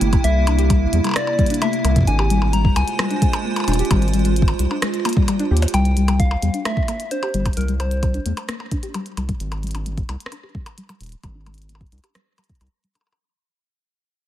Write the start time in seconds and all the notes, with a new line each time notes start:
Already playing: C3 A#3 E4 G5
0.01 G1 A3, closed hi-hat
0.13 kick, closed hi-hat, percussion blips
0.24 C2 A#3 E5, closed hi-hat
0.47 D4, closed hi-hat, percussion blips
0.59 G4, closed hi-hat
0.70 G3, kick, closed hi-hat, percussion blips
0.93 E2 G3, closed hi-hat
1.04 G3, closed hi-hat, percussion blips
1.07 percussion blips
1.09 percussion blips
1.11 percussion blips
1.14 D5, cross-stick, closed hi-hat, percussion blips
1.27 percussion blips
1.39 G3, kick, closed hi-hat
1.46 D4, closed hi-hat
1.50 closed hi-hat
1.54 closed hi-hat
1.62 A3 E5, closed hi-hat, percussion blips
1.73 closed hi-hat
1.85 C2 A#3, closed hi-hat, percussion blips
1.96 kick, closed hi-hat
1.98 kick
2.01 kick
2.03 kick
2.05 G#1 G#3 D4 F4 C5 G#5, kick, closed hi-hat
2.19 G4, percussion blips
2.30 G3, closed hi-hat
2.42 percussion blips
2.53 G3 A#5, closed hi-hat
2.65 G3, kick
2.76 C2 G#5, closed hi-hat, percussion blips
2.88 closed hi-hat
2.99 G3, cross-stick, closed hi-hat, percussion blips
3.11 D4, closed hi-hat
3.22 G#3, kick, closed hi-hat
3.33 closed hi-hat, percussion blips
3.45 A#3
3.56 closed hi-hat, percussion blips
3.60 percussion blips
3.64 D#1 D4, closed hi-hat, percussion blips
3.68 percussion blips
3.72 closed hi-hat, percussion blips
3.75 G4, closed hi-hat, percussion blips
3.85 closed hi-hat
3.91 G#1 G3, kick, closed hi-hat, percussion blips
4.02 closed hi-hat
4.08 closed hi-hat
4.14 G3, closed hi-hat
4.19 closed hi-hat
4.25 G3, closed hi-hat
4.36 closed hi-hat
4.42 kick
4.48 closed hi-hat, percussion blips
4.59 C2 G3, closed hi-hat
4.71 D4, percussion blips
4.82 G#3, cross-stick, closed hi-hat
4.94 closed hi-hat
5.05 A#3, closed hi-hat, percussion blips
5.09 closed hi-hat
5.13 G3, kick, closed hi-hat
5.28 G3, closed hi-hat, percussion blips
5.39 D4, closed hi-hat
5.51 D#2 G4
5.57 closed hi-hat
5.62 closed hi-hat, percussion blips
5.68 closed hi-hat
5.74 C2 G3 G5, closed hi-hat, percussion blips
5.85 closed hi-hat
5.97 G3, closed hi-hat
6.08 G3, closed hi-hat, percussion blips
6.20 F5, kick, closed hi-hat
6.31 percussion blips
6.42 E2 G3, closed hi-hat
6.54 D4, closed hi-hat
6.65 A3 E5, cross-stick, closed hi-hat, percussion blips
6.77 kick
6.88 A#3, closed hi-hat, percussion blips
7.00 closed hi-hat
7.11 D4 C5, closed hi-hat
7.23 G4, closed hi-hat, percussion blips
7.34 G1 G3, closed hi-hat
7.46 kick, closed hi-hat, percussion blips
7.53 G3, closed hi-hat
7.57 C2 A#4, closed hi-hat
7.61 closed hi-hat
7.68 G3, closed hi-hat
7.80 C5, closed hi-hat, percussion blips
7.91 closed hi-hat
8.03 G3, kick, closed hi-hat, percussion blips
8.14 D4, closed hi-hat
8.26 E2 A3, closed hi-hat
8.37 closed hi-hat, percussion blips
8.49 A#3, cross-stick, closed hi-hat
8.60 percussion blips
8.71 D4, kick, closed hi-hat
8.83 G4, closed hi-hat
8.94 G3, closed hi-hat, percussion blips
9.06 closed hi-hat
9.17 C2 G3, closed hi-hat, percussion blips
9.29 G3, kick, closed hi-hat
9.40 G#1, closed hi-hat
9.52 closed hi-hat, percussion blips
9.63 G3, closed hi-hat
9.67 closed hi-hat
9.71 D4, closed hi-hat
9.75 closed hi-hat, percussion blips
9.86 G#3, closed hi-hat
9.98 kick, closed hi-hat
10.09 C2 A#3, closed hi-hat, percussion blips
10.20 closed hi-hat
10.26 cross-stick
10.32 D4, closed hi-hat, percussion blips
10.43 G4
10.55 G3, kick
10.66 closed hi-hat, percussion blips
10.78 G3, closed hi-hat
10.89 G3, closed hi-hat, percussion blips
11.01 D#1, closed hi-hat
11.03 closed hi-hat
11.06 closed hi-hat
11.09 closed hi-hat
11.12 closed hi-hat
11.23 G#1 G3, kick, closed hi-hat, percussion blips
11.35 D4
11.46 G#3, closed hi-hat, percussion blips
11.54 closed hi-hat
11.58 closed hi-hat
11.62 closed hi-hat
11.69 A#3, closed hi-hat
11.75 percussion blips
11.81 kick, closed hi-hat
11.87 closed hi-hat
11.92 C2 D4, closed hi-hat
11.98 closed hi-hat
12.04 G4, closed hi-hat, percussion blips
12.15 G3, cross-stick, closed hi-hat
12.38 G3, closed hi-hat, percussion blips
12.44 closed hi-hat
12.49 G3, kick, closed hi-hat
12.55 closed hi-hat
12.61 C2, closed hi-hat, percussion blips
12.67 closed hi-hat
12.84 G3, closed hi-hat
12.95 D4, closed hi-hat, percussion blips
13.01 percussion blips
13.07 percussion blips
13.13 percussion blips